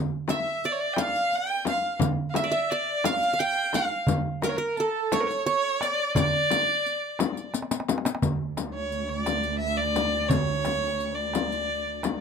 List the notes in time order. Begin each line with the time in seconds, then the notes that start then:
0.28 E5, riq, darbuka tek, frame drum
0.62 D5, riq, darbuka ka
0.71 C#5
0.80 D5
0.93 G5, frame drum
0.97 F5, riq, darbuka tek
1.15 riq, darbuka ka
1.32 G5, riq, darbuka ka
1.65 F5, riq, darbuka tek, frame drum
1.99 riq, frame drum, darbuka dum
2.30 F5
2.34 E5, riq, darbuka tek, frame drum
2.44 D5
2.52 E5
2.70 D5, riq
3.04 F5, riq, darbuka tek, frame drum
3.21 riq, darbuka ka
3.33 F5
3.39 G5, riq, darbuka ka
3.73 F5, riq, darbuka tek, frame drum
4.07 riq, darbuka dum, frame drum
4.42 A#4, riq, darbuka tek, frame drum
4.49 C#5
4.57 A#4
4.76 A4, riq, darbuka ka
5.12 C#5, riq, darbuka tek, frame drum
5.20 A#4
5.27 C#5, riq, darbuka ka
5.46 C#5, riq, darbuka ka
5.81 D5, riq, darbuka tek
6.15 D5, riq, darbuka dum, frame drum
6.50 riq, frame drum
6.86 riq, darbuka ka
7.19 riq, darbuka tek, frame drum
7.37 riq, darbuka ka
7.54 riq, darbuka tek
7.62 darbuka ka
7.71 riq, darbuka tek
7.80 darbuka ka
7.88 riq, darbuka tek, frame drum
7.98 darbuka ka
8.05 riq, darbuka tek
8.15 darbuka ka
8.22 D2, riq, darbuka dum, frame drum
8.57 riq, darbuka tek, frame drum
8.74 C#5
8.92 riq
9.08 C#5
9.19 D5
9.26 riq, darbuka tek, frame drum
9.43 riq, darbuka ka
9.59 E5
9.77 D5
9.96 riq, darbuka tek, frame drum
10.28 C#5, riq, darbuka dum, frame drum
10.65 riq, darbuka tek, frame drum
11.00 riq
11.15 D5
11.34 riq, darbuka tek, frame drum
11.52 riq, darbuka ka
11.68 darbuka ka
12.03 riq, darbuka tek, frame drum